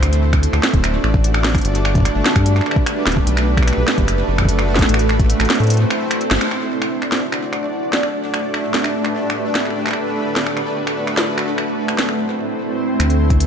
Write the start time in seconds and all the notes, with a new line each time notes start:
Already playing: A3
0.02 D2 D4 F#4 D5, finger snap, closed hi-hat
0.13 closed hi-hat
0.33 finger snap, kick, closed hi-hat
0.43 closed hi-hat
0.53 D2, finger snap
0.63 snare
0.73 D1, kick, closed hi-hat
0.84 finger snap, closed hi-hat
1.04 A1, finger snap
1.14 kick
1.24 closed hi-hat
1.34 finger snap
1.45 snare
1.55 finger snap, kick, closed hi-hat
1.58 closed hi-hat
1.61 G1 A3 G4 B4, closed hi-hat
1.65 closed hi-hat
1.75 closed hi-hat
1.85 finger snap
1.95 kick, closed hi-hat
1.98 kick
2.00 kick
2.03 finger snap, kick, closed hi-hat
2.15 G1
2.26 snare
2.36 G2, finger snap, kick, closed hi-hat
2.46 closed hi-hat
2.56 finger snap
2.61 finger snap
2.66 finger snap
2.71 finger snap
2.76 kick
2.86 finger snap, closed hi-hat
3.06 D1, finger snap, snare
3.12 closed hi-hat
3.17 kick
3.27 B1 F#4, closed hi-hat
3.37 finger snap, closed hi-hat
3.57 finger snap, kick, closed hi-hat
3.62 finger snap
3.68 finger snap, closed hi-hat
3.73 finger snap
3.77 B1
3.88 finger snap, snare
3.98 F#1, kick, closed hi-hat
4.08 finger snap, closed hi-hat
4.28 F#1
4.38 finger snap, kick
4.42 kick
4.45 kick, closed hi-hat
4.59 finger snap
4.76 kick, snare, closed hi-hat
4.82 snare
4.89 A1 C4 E4 C5, closed hi-hat
4.94 finger snap
4.99 closed hi-hat
5.09 finger snap
5.19 kick, closed hi-hat
5.30 closed hi-hat
5.40 A1, finger snap, closed hi-hat
5.45 closed hi-hat
5.50 snare, closed hi-hat
5.55 closed hi-hat
5.60 A2, closed hi-hat
5.63 closed hi-hat
5.67 closed hi-hat
5.70 closed hi-hat
5.74 closed hi-hat
5.77 closed hi-hat
5.90 finger snap
6.11 finger snap, closed hi-hat
6.21 closed hi-hat
6.31 G1, snare
6.41 finger snap, closed hi-hat
6.51 A3 D4 F#4 D5, finger snap
6.82 finger snap
7.02 finger snap
7.12 snare
7.32 finger snap
7.53 finger snap
7.93 snare
8.03 finger snap
8.13 D4 G4 B4
8.34 finger snap
8.54 finger snap
8.74 snare
8.84 finger snap
9.05 finger snap
9.30 finger snap
9.55 finger snap, snare
9.60 finger snap
9.65 finger snap
9.70 finger snap
9.75 F#4
9.86 finger snap
9.88 finger snap
9.91 finger snap
9.93 finger snap
10.36 snare
10.47 finger snap
10.57 finger snap
10.87 finger snap
11.07 finger snap
11.17 snare
11.38 C4 E4 C5, finger snap
11.58 finger snap
11.88 finger snap
11.98 snare
12.09 finger snap
13.00 D2 A3 B3 D4 F#4 B4 D5, finger snap, closed hi-hat
13.10 closed hi-hat
13.30 kick, closed hi-hat
13.40 closed hi-hat